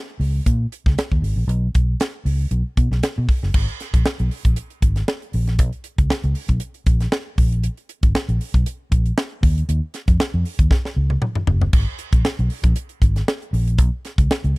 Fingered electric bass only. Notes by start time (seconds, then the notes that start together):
0.20 C#2
0.46 A#2
0.87 C#2
1.12 D#2
1.22 G#1
1.36 A#1
1.47 B1
1.75 B1
2.25 C#2
2.51 B1
2.77 B2
2.91 B1
3.18 B2
3.43 F#1
3.55 G#1
3.93 A#1
4.20 B1
4.45 A#1
4.82 G#1
5.34 A#1
5.59 B1
5.98 C#2
6.24 C#2
6.49 B1
6.86 A#1
7.38 A#1
8.03 G#1
8.29 A#1
8.54 B1
8.91 A#1
9.43 D#2
9.69 D#2
10.08 F2
10.34 F2
10.59 D#2
10.96 C#2
11.47 F#1
11.73 G#1
12.13 A#1
12.39 B1
12.63 A#1
13.02 G#1
13.53 A#1
13.79 B1
14.18 C#2
14.44 C#2